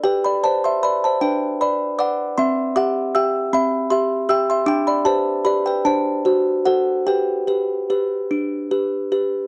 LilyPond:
\new Staff \with { instrumentName = "Music box" } { \time 6/8 \key g \major \tempo 4. = 51 << { <b' g''>16 <d'' b''>16 <c'' a''>16 <e'' c'''>16 <d'' b''>16 <c'' a''>16 <b' g''>8 <d'' b''>8 <fis'' d'''>8 | <e'' c'''>8 <fis'' d'''>8 <g'' e'''>8 <e'' b''>8 <e'' c'''>8 <g'' e'''>16 <e'' c'''>16 | <g'' d'''>16 <d'' b''>16 <c'' a''>8 <d'' b''>16 <b' g''>16 <c'' a''>4 <a' fis''>8 | <b' g''>2~ <b' g''>8 r8 | } \\ { g'8 <b' d''>8 b'8 d'8 b'8 <b' d''>8 | c'8 <g' e''>8 <g' e''>8 c'8 g'8 <g' e''>8 | d'8 <g' b'>8 <g' b'>8 d'8 <fis' c''>8 <fis' c''>8 | g'8 <g' b'>8 <g' b'>8 d'8 <g' b'>8 <g' b'>8 | } >> }